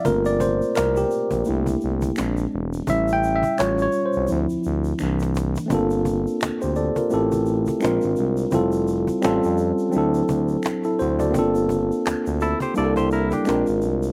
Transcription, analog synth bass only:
X:1
M:4/4
L:1/16
Q:"Swing 16ths" 1/4=85
K:Gdor
V:1 name="Analog synth bass" clef=bass
G,,,4 C,,2 z B,,, C,,2 C,,2 B,,,2 E,,,2 | A,,,4 A,,,2 z ^B,,, D,, D,, D,,2 C,,4 | G,,,4 D,, D,,2 z A,,,4 B,,, _A,,, C,,2 | F,,,4 A,,, ^E,,2 z D,,2 D,,2 z2 D,,2 |
G,,,4 D,, D,,2 z C,,4 B,,, _A,,, C,,2 |]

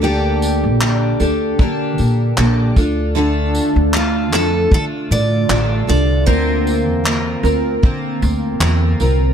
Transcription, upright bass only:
X:1
M:4/4
L:1/16
Q:"Swing 16ths" 1/4=77
K:Dm
V:1 name="Upright bass" clef=bass
D,,3 B,,,3 D,,2 D,2 B,,2 B,,,2 D,,2- | D,,3 D,,3 F,,2 D,2 A,,2 A,,,2 C,,2 | D,,3 E,,3 D,,2 D,2 D,,2 E,,2 C,,2 |]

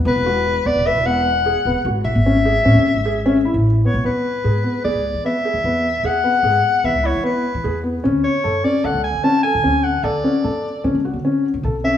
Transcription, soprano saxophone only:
X:1
M:5/4
L:1/8
Q:1/4=150
K:Emix
V:1 name="Soprano saxophone"
B3 d e f4 z | e8 z c | B4 d2 e4 | f4 e c B3 z |
z c2 d f g a g2 f | d4 z4 z e |]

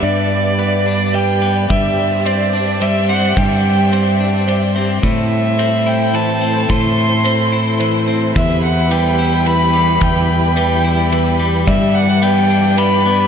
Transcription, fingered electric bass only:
X:1
M:3/4
L:1/8
Q:1/4=108
K:Em
V:1 name="Fingered electric bass" clef=bass
G,,6 | G,,6 | G,,6 | A,,6 |
A,,6 | E,,6 | E,,6 | G,,6 |]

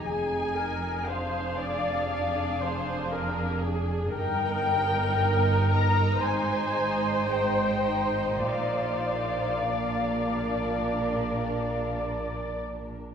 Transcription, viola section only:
X:1
M:4/4
L:1/8
Q:1/4=57
K:Bbmix
V:1 name="Viola section"
A B c d d c B A | B4 c4 | d6- d z |]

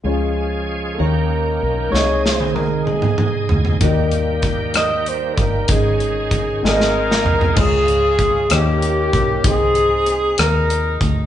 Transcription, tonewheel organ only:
X:1
M:6/8
L:1/8
Q:3/8=64
K:Db
V:1 name="Tonewheel organ"
[F,A,DA]3 [E,B,DG=G]3 | [C,A,EA]6 | [E,=G,B,_G=G]6 | [E,A,D=GA]3 [E,A,CA]3 |
z6 | z6 |]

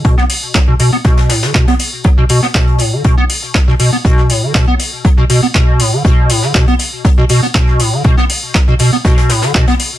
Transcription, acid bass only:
X:1
M:4/4
L:1/16
Q:1/4=120
K:Bm
V:1 name="Acid bass" clef=bass
B,, B, z2 F, B,, B,, B, B,,2 A,, D, B,, B, z2 | F, B,, B,, B, B,,2 A,, D, B,, B, z2 F, B,, B,, B, | B,,2 A,, D, B,, B, z2 F, B,, B,, B, B,,2 A,, D, | B,,2 A,, D, B,, B, z2 F, B,, B,, B, B,,2 A,, D, |
B,, B, z2 F, B,, B,, B, B,,2 A,, D, B,, B, z2 |]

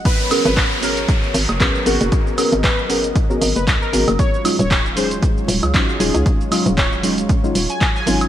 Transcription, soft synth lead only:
X:1
M:4/4
L:1/16
Q:"Swing 16ths" 1/4=116
K:G#m
V:1 name="Soft synth lead"
B2 z B2 z A z6 z F2 | z4 B z6 B z A2 z | c2 z c2 z ^B z6 z G2 | z4 c z6 g z g2 z |]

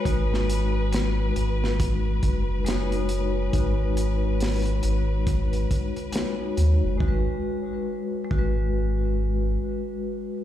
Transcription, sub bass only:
X:1
M:4/4
L:1/16
Q:"Swing 16ths" 1/4=69
K:G#m
V:1 name="Sub bass" clef=bass
G,,,6 G,,,4 F,,,6 | G,,,6 G,,,4 z4 D,, F,,, | G,,, z4 z G,,,6 z4 |]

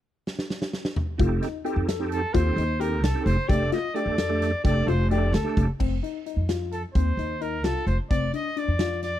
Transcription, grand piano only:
X:1
M:5/8
L:1/8
Q:1/4=130
K:Fmix
V:1 name="Grand piano"
z4 z | F E G A2 | F E G A2 | G F G A2 |
G F G A2 | C E E F2 | C E E F2 | C D D F2 |]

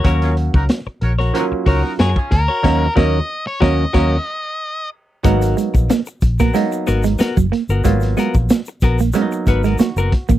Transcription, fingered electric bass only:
X:1
M:4/4
L:1/16
Q:1/4=92
K:Abdor
V:1 name="Fingered electric bass" clef=bass
E,,3 D,, z2 B,,,2 z2 D,, z G,, z =D,, z | E,,2 E,,2 z2 E,,2 E,,2 z6 | A,,,2 z B,,, z2 B,,,2 z2 A,,,2 z G,,, z =G,,, | A,,,2 z B,,, z2 B,,,2 z2 A,,,2 z G,,, z =A,,, |]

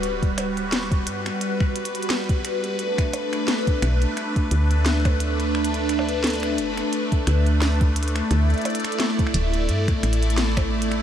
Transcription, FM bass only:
X:1
M:4/4
L:1/8
Q:"Swing 16ths" 1/4=87
K:Bphr
V:1 name="FM bass" clef=bass
D,,,3 G,, z4 | z3 B,,, z D,,3- | D,,3 F,,, z D,,3 | D,, z2 D,,, G,, A,,,3 |]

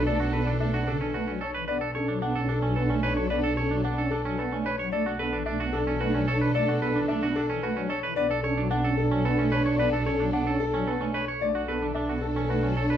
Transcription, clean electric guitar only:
X:1
M:3/4
L:1/16
Q:1/4=111
K:Bm
V:1 name="Clean electric guitar"
A F B D D F D C F C A B | B A c D D A D C A C B c | B A c D D A D C A C B c | A F B D D F D C F C A B |
A F B D D F D C F C A B | B A c D D A z C A C B c | B A c D D A z C A C B c | z F B D D F z C F C A B |]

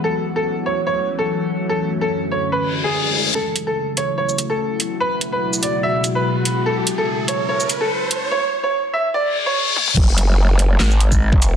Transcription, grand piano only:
X:1
M:4/4
L:1/16
Q:"Swing 16ths" 1/4=145
K:F#m
V:1 name="Grand piano"
A2 z A2 z c z c2 z A4 z | A2 z A2 z c z B2 z G4 z | A2 z A2 z c z c2 z A4 z | B2 z B2 z d z e2 z B4 z |
A2 z A2 z c z c2 z A4 z | c2 z c2 z e z d2 z c4 z | z16 |]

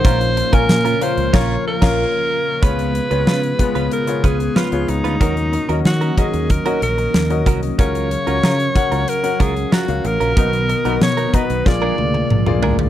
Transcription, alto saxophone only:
X:1
M:4/4
L:1/16
Q:1/4=93
K:Bbm
V:1 name="Alto saxophone"
c3 B3 c2 d2 B6 | [K:Dbmix] c8 B2 A2 F2 E2- | E4 G2 A2 B2 B4 z2 | d8 B2 A2 G2 B2- |
B4 d2 =B2 =d6 z2 |]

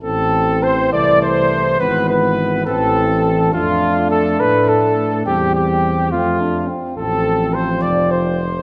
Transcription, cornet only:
X:1
M:6/8
L:1/8
Q:3/8=70
K:Am
V:1 name="Cornet"
A2 c d c2 | B B2 A3 | F2 A B A2 | G G2 F2 z |
[K:F] A2 c d c2 |]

